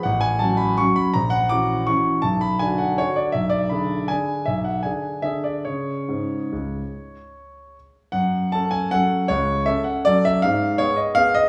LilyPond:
\new Staff \with { instrumentName = "Grand piano" } { \time 3/4 \key fis \minor \tempo 4 = 159 << { fis''8 gis''8 a''8 b''8 cis'''8 b''8 | ais''8 fis''8 d'''4 cis'''4 | a''8 b''8 gis''8 fis''8 cis''8 d''8 | e''8 d''8 b''4 gis''4 |
e''8 fis''8 gis''4 e''8 d''8 | cis''2.~ | cis''2 r4 | fis''4 a''8 gis''8 fis''4 |
cis''4 e''8 fis''8 d''8 e''8 | f''4 cis''8 dis''8 f''8 dis''8 | } \\ { a,,4 <fis cis' fis'>4 <fis cis' fis'>4 | ais,,4 <e cis' fis'>4 <e cis' fis'>4 | b,,4 <d d' fis'>4 <d d' fis'>4 | b,,4 <d d' gis'>4 <d d' gis'>4 |
b,,4 <d d' gis'>4 <d d' gis'>4 | <cis cis' gis'>4 gis,4 cis,4 | r2. | fis,4 <cis' a'>4 <fis cis' a'>4 |
cis,4 <cis' a'>4 <fis cis' a'>4 | aes,4 <ces' aes'>4 <ces' aes'>4 | } >> }